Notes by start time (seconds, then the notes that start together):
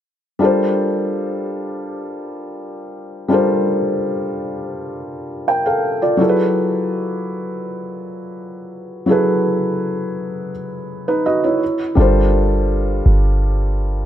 0.39 G3 D4 F4 A4
0.44 A#4 C5
3.28 G3 D4 F4 A4
3.33 A#4 C5
5.48 A#4 G5
5.66 A4 F5
6.02 F4 D5
6.17 F#3 E4 G#4
6.21 A4 A#4
6.29 B4
9.06 F#3 E4 G#4
9.10 A4 B4
11.08 D#4 B4
11.26 F#4 D#5
11.44 E4 C#5
11.95 G1 G3 D4 F4 A4
12.00 A#4 C5
13.06 G1